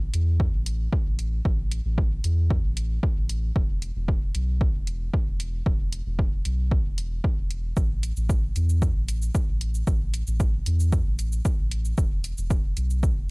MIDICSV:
0, 0, Header, 1, 3, 480
1, 0, Start_track
1, 0, Tempo, 526316
1, 1324, Time_signature, 4, 2, 24, 8
1, 12132, End_track
2, 0, Start_track
2, 0, Title_t, "Sub bass"
2, 0, Program_c, 0, 38
2, 125, Note_on_c, 0, 40, 89
2, 444, Note_off_c, 0, 40, 0
2, 490, Note_on_c, 0, 33, 93
2, 803, Note_off_c, 0, 33, 0
2, 969, Note_on_c, 0, 33, 84
2, 1283, Note_off_c, 0, 33, 0
2, 1325, Note_on_c, 0, 33, 101
2, 1644, Note_off_c, 0, 33, 0
2, 1688, Note_on_c, 0, 33, 90
2, 2002, Note_off_c, 0, 33, 0
2, 2045, Note_on_c, 0, 40, 90
2, 2364, Note_off_c, 0, 40, 0
2, 2409, Note_on_c, 0, 33, 95
2, 2723, Note_off_c, 0, 33, 0
2, 2888, Note_on_c, 0, 33, 85
2, 3203, Note_off_c, 0, 33, 0
2, 3245, Note_on_c, 0, 28, 101
2, 3564, Note_off_c, 0, 28, 0
2, 3609, Note_on_c, 0, 28, 90
2, 3923, Note_off_c, 0, 28, 0
2, 3964, Note_on_c, 0, 35, 90
2, 4283, Note_off_c, 0, 35, 0
2, 4328, Note_on_c, 0, 28, 92
2, 4642, Note_off_c, 0, 28, 0
2, 4808, Note_on_c, 0, 28, 82
2, 5122, Note_off_c, 0, 28, 0
2, 5164, Note_on_c, 0, 28, 103
2, 5483, Note_off_c, 0, 28, 0
2, 5528, Note_on_c, 0, 28, 90
2, 5842, Note_off_c, 0, 28, 0
2, 5885, Note_on_c, 0, 35, 90
2, 6204, Note_off_c, 0, 35, 0
2, 6248, Note_on_c, 0, 28, 98
2, 6562, Note_off_c, 0, 28, 0
2, 6728, Note_on_c, 0, 28, 81
2, 7042, Note_off_c, 0, 28, 0
2, 7084, Note_on_c, 0, 33, 101
2, 7403, Note_off_c, 0, 33, 0
2, 7448, Note_on_c, 0, 33, 90
2, 7762, Note_off_c, 0, 33, 0
2, 7805, Note_on_c, 0, 40, 89
2, 8124, Note_off_c, 0, 40, 0
2, 8168, Note_on_c, 0, 33, 97
2, 8482, Note_off_c, 0, 33, 0
2, 8648, Note_on_c, 0, 33, 83
2, 8963, Note_off_c, 0, 33, 0
2, 9004, Note_on_c, 0, 33, 99
2, 9323, Note_off_c, 0, 33, 0
2, 9369, Note_on_c, 0, 33, 92
2, 9683, Note_off_c, 0, 33, 0
2, 9725, Note_on_c, 0, 40, 89
2, 10044, Note_off_c, 0, 40, 0
2, 10089, Note_on_c, 0, 33, 95
2, 10403, Note_off_c, 0, 33, 0
2, 10568, Note_on_c, 0, 33, 82
2, 10882, Note_off_c, 0, 33, 0
2, 10924, Note_on_c, 0, 28, 97
2, 11243, Note_off_c, 0, 28, 0
2, 11289, Note_on_c, 0, 28, 93
2, 11603, Note_off_c, 0, 28, 0
2, 11644, Note_on_c, 0, 35, 89
2, 11963, Note_off_c, 0, 35, 0
2, 12008, Note_on_c, 0, 28, 99
2, 12132, Note_off_c, 0, 28, 0
2, 12132, End_track
3, 0, Start_track
3, 0, Title_t, "Drums"
3, 124, Note_on_c, 9, 42, 80
3, 215, Note_off_c, 9, 42, 0
3, 364, Note_on_c, 9, 36, 115
3, 455, Note_off_c, 9, 36, 0
3, 604, Note_on_c, 9, 42, 82
3, 695, Note_off_c, 9, 42, 0
3, 844, Note_on_c, 9, 36, 101
3, 935, Note_off_c, 9, 36, 0
3, 1084, Note_on_c, 9, 42, 81
3, 1175, Note_off_c, 9, 42, 0
3, 1324, Note_on_c, 9, 36, 108
3, 1416, Note_off_c, 9, 36, 0
3, 1564, Note_on_c, 9, 42, 80
3, 1655, Note_off_c, 9, 42, 0
3, 1804, Note_on_c, 9, 36, 98
3, 1896, Note_off_c, 9, 36, 0
3, 2044, Note_on_c, 9, 42, 78
3, 2135, Note_off_c, 9, 42, 0
3, 2284, Note_on_c, 9, 36, 110
3, 2376, Note_off_c, 9, 36, 0
3, 2525, Note_on_c, 9, 42, 79
3, 2616, Note_off_c, 9, 42, 0
3, 2764, Note_on_c, 9, 36, 102
3, 2855, Note_off_c, 9, 36, 0
3, 3004, Note_on_c, 9, 42, 77
3, 3095, Note_off_c, 9, 42, 0
3, 3244, Note_on_c, 9, 36, 107
3, 3336, Note_off_c, 9, 36, 0
3, 3485, Note_on_c, 9, 42, 77
3, 3576, Note_off_c, 9, 42, 0
3, 3724, Note_on_c, 9, 36, 96
3, 3815, Note_off_c, 9, 36, 0
3, 3964, Note_on_c, 9, 42, 75
3, 4055, Note_off_c, 9, 42, 0
3, 4204, Note_on_c, 9, 36, 110
3, 4295, Note_off_c, 9, 36, 0
3, 4444, Note_on_c, 9, 42, 80
3, 4535, Note_off_c, 9, 42, 0
3, 4684, Note_on_c, 9, 36, 96
3, 4775, Note_off_c, 9, 36, 0
3, 4924, Note_on_c, 9, 42, 76
3, 5015, Note_off_c, 9, 42, 0
3, 5164, Note_on_c, 9, 36, 109
3, 5255, Note_off_c, 9, 36, 0
3, 5404, Note_on_c, 9, 42, 78
3, 5495, Note_off_c, 9, 42, 0
3, 5644, Note_on_c, 9, 36, 98
3, 5735, Note_off_c, 9, 36, 0
3, 5884, Note_on_c, 9, 42, 78
3, 5976, Note_off_c, 9, 42, 0
3, 6124, Note_on_c, 9, 36, 113
3, 6215, Note_off_c, 9, 36, 0
3, 6365, Note_on_c, 9, 42, 79
3, 6456, Note_off_c, 9, 42, 0
3, 6604, Note_on_c, 9, 36, 97
3, 6695, Note_off_c, 9, 36, 0
3, 6845, Note_on_c, 9, 42, 80
3, 6936, Note_off_c, 9, 42, 0
3, 7084, Note_on_c, 9, 36, 114
3, 7084, Note_on_c, 9, 82, 51
3, 7175, Note_off_c, 9, 36, 0
3, 7176, Note_off_c, 9, 82, 0
3, 7324, Note_on_c, 9, 42, 83
3, 7324, Note_on_c, 9, 82, 28
3, 7416, Note_off_c, 9, 42, 0
3, 7416, Note_off_c, 9, 82, 0
3, 7448, Note_on_c, 9, 82, 41
3, 7539, Note_off_c, 9, 82, 0
3, 7564, Note_on_c, 9, 36, 104
3, 7565, Note_on_c, 9, 82, 51
3, 7655, Note_off_c, 9, 36, 0
3, 7656, Note_off_c, 9, 82, 0
3, 7805, Note_on_c, 9, 42, 82
3, 7805, Note_on_c, 9, 82, 29
3, 7896, Note_off_c, 9, 42, 0
3, 7896, Note_off_c, 9, 82, 0
3, 7929, Note_on_c, 9, 82, 41
3, 8020, Note_off_c, 9, 82, 0
3, 8044, Note_on_c, 9, 36, 115
3, 8045, Note_on_c, 9, 82, 50
3, 8135, Note_off_c, 9, 36, 0
3, 8136, Note_off_c, 9, 82, 0
3, 8285, Note_on_c, 9, 42, 84
3, 8285, Note_on_c, 9, 82, 49
3, 8376, Note_off_c, 9, 42, 0
3, 8376, Note_off_c, 9, 82, 0
3, 8408, Note_on_c, 9, 82, 40
3, 8499, Note_off_c, 9, 82, 0
3, 8524, Note_on_c, 9, 36, 105
3, 8525, Note_on_c, 9, 82, 50
3, 8615, Note_off_c, 9, 36, 0
3, 8616, Note_off_c, 9, 82, 0
3, 8764, Note_on_c, 9, 42, 81
3, 8856, Note_off_c, 9, 42, 0
3, 8888, Note_on_c, 9, 82, 42
3, 8979, Note_off_c, 9, 82, 0
3, 9004, Note_on_c, 9, 36, 115
3, 9004, Note_on_c, 9, 82, 51
3, 9095, Note_off_c, 9, 36, 0
3, 9095, Note_off_c, 9, 82, 0
3, 9244, Note_on_c, 9, 42, 84
3, 9244, Note_on_c, 9, 82, 29
3, 9336, Note_off_c, 9, 42, 0
3, 9336, Note_off_c, 9, 82, 0
3, 9368, Note_on_c, 9, 82, 40
3, 9459, Note_off_c, 9, 82, 0
3, 9484, Note_on_c, 9, 36, 102
3, 9484, Note_on_c, 9, 82, 51
3, 9575, Note_off_c, 9, 36, 0
3, 9575, Note_off_c, 9, 82, 0
3, 9724, Note_on_c, 9, 42, 84
3, 9724, Note_on_c, 9, 82, 29
3, 9815, Note_off_c, 9, 42, 0
3, 9815, Note_off_c, 9, 82, 0
3, 9848, Note_on_c, 9, 82, 42
3, 9939, Note_off_c, 9, 82, 0
3, 9963, Note_on_c, 9, 82, 51
3, 9964, Note_on_c, 9, 36, 121
3, 10054, Note_off_c, 9, 82, 0
3, 10055, Note_off_c, 9, 36, 0
3, 10204, Note_on_c, 9, 42, 88
3, 10204, Note_on_c, 9, 82, 49
3, 10295, Note_off_c, 9, 42, 0
3, 10295, Note_off_c, 9, 82, 0
3, 10327, Note_on_c, 9, 82, 41
3, 10418, Note_off_c, 9, 82, 0
3, 10444, Note_on_c, 9, 36, 110
3, 10444, Note_on_c, 9, 82, 50
3, 10535, Note_off_c, 9, 36, 0
3, 10535, Note_off_c, 9, 82, 0
3, 10683, Note_on_c, 9, 42, 84
3, 10775, Note_off_c, 9, 42, 0
3, 10807, Note_on_c, 9, 82, 42
3, 10899, Note_off_c, 9, 82, 0
3, 10924, Note_on_c, 9, 36, 121
3, 10924, Note_on_c, 9, 82, 51
3, 11015, Note_off_c, 9, 36, 0
3, 11015, Note_off_c, 9, 82, 0
3, 11164, Note_on_c, 9, 42, 89
3, 11164, Note_on_c, 9, 82, 28
3, 11255, Note_off_c, 9, 42, 0
3, 11255, Note_off_c, 9, 82, 0
3, 11288, Note_on_c, 9, 82, 39
3, 11379, Note_off_c, 9, 82, 0
3, 11404, Note_on_c, 9, 36, 108
3, 11404, Note_on_c, 9, 82, 51
3, 11495, Note_off_c, 9, 36, 0
3, 11495, Note_off_c, 9, 82, 0
3, 11644, Note_on_c, 9, 42, 84
3, 11644, Note_on_c, 9, 82, 28
3, 11735, Note_off_c, 9, 42, 0
3, 11735, Note_off_c, 9, 82, 0
3, 11768, Note_on_c, 9, 82, 41
3, 11859, Note_off_c, 9, 82, 0
3, 11884, Note_on_c, 9, 36, 119
3, 11884, Note_on_c, 9, 82, 50
3, 11975, Note_off_c, 9, 36, 0
3, 11975, Note_off_c, 9, 82, 0
3, 12132, End_track
0, 0, End_of_file